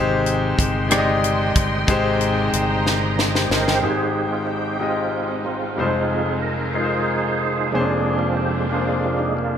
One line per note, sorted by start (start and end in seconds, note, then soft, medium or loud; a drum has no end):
0.00 0.54 G#1 medium
0.00 0.86 C3 medium
0.00 3.80 D#3 soft
0.00 0.69 G#3 medium
0.00 3.80 G#3 soft
0.00 3.80 C4 soft
0.00 0.69 D#4 medium
0.00 0.70 G4 medium
0.00 3.80 G4 medium
0.00 0.70 C5 medium
0.00 3.81 D#5 medium
0.00 3.80 G5 medium
0.00 3.80 C6 medium
0.26 closed hi-hat soft
0.58 1.52 G1 medium
0.58 kick medium
0.58 closed hi-hat medium
0.88 1.66 G#3 medium
0.88 1.66 D#4 medium
0.88 1.67 G4 medium
0.88 0.97 D5 medium
0.88 closed hi-hat medium
0.92 cross-stick loud
0.98 1.71 D#5 medium
1.24 closed hi-hat soft
1.55 1.86 G1 medium
1.55 kick medium
1.55 closed hi-hat medium
1.87 2.49 G#1 medium
1.87 2.82 C3 medium
1.87 2.64 G#3 medium
1.87 2.65 D#4 medium
1.87 2.65 G4 medium
1.87 2.66 C5 medium
1.87 3.81 A#5 medium
1.87 kick medium
1.87 closed hi-hat medium
2.21 closed hi-hat soft
2.53 3.47 G1 medium
2.53 closed hi-hat medium
2.87 snare soft
3.19 snare medium
3.35 3.50 G4 soft
3.35 3.50 C5 soft
3.35 snare medium
3.50 3.80 G1 medium
3.50 3.67 A#4 soft
3.50 3.81 C5 medium
3.50 3.67 D#5 medium
3.50 snare medium
3.67 3.83 C5 soft
3.67 3.98 G5 soft
3.67 snare medium
3.81 5.74 G#1 soft
3.81 5.74 G#2 soft
3.81 4.27 G#2 soft
3.81 4.59 G#3 medium
3.81 7.70 G#3 medium
3.81 7.70 C4 medium
3.81 4.78 C4 soft
3.81 7.69 D#4 soft
3.81 4.60 D#4 soft
3.81 4.77 D#4 soft
3.81 4.60 G4 soft
3.81 4.27 G4 soft
3.81 4.34 G#4 medium
3.81 4.61 C5 medium
3.81 5.76 G5 medium
4.33 4.48 F4 soft
4.47 4.81 G4 soft
4.79 5.57 G#3 soft
4.79 5.45 C4 soft
4.79 5.57 D#4 soft
4.79 5.31 F4 medium
4.79 5.58 G4 soft
4.79 5.58 D#5 medium
5.28 5.44 D#4 medium
5.45 5.78 G#3 soft
5.45 6.40 C4 soft
5.45 6.29 F4 medium
5.76 7.70 F1 soft
5.76 7.70 F2 soft
5.76 6.22 F3 soft
5.76 5.84 G3 soft
5.76 6.22 G#3 soft
5.76 6.55 D#4 soft
5.76 6.23 D#4 soft
5.76 7.72 F4 medium
5.76 6.56 F4 medium
5.76 6.56 C5 medium
5.83 6.58 G#3 medium
6.26 6.34 G#4 medium
6.42 6.77 A#4 medium
6.74 7.52 G#3 soft
6.74 7.53 D#4 soft
6.74 7.70 D#4 soft
6.74 7.53 F4 soft
6.74 7.70 G#4 soft
6.74 6.84 A#4 soft
6.74 7.39 C5 medium
6.84 7.57 C5 medium
7.40 7.71 C5 medium
7.71 9.58 F1 soft
7.71 9.58 F2 soft
7.71 9.58 F2 medium
7.71 8.67 F3 soft
7.71 8.67 G#3 soft
7.71 9.58 G#3 medium
7.71 8.50 A#3 medium
7.71 9.58 A#3 medium
7.71 8.67 C4 soft
7.71 9.58 C4 medium
7.71 7.80 C#4 soft
7.71 8.67 D4 soft
7.71 9.58 D4 medium
7.71 8.18 G#4 medium
7.71 8.51 G#4 soft
7.71 8.51 C5 medium
7.79 8.54 D4 medium
8.19 8.36 F4 medium
8.37 8.52 G4 medium
8.69 9.03 G#3 soft
8.69 9.48 A#3 soft
8.69 9.04 D4 soft
8.69 9.49 D4 soft
8.69 9.21 F4 medium
8.69 9.49 G#4 soft
8.74 9.50 C5 soft
9.04 9.34 F3 soft
9.04 9.34 G#3 soft
9.04 9.34 D4 soft
9.19 9.37 D#4 medium
9.37 9.58 A#3 soft
9.37 9.58 F4 medium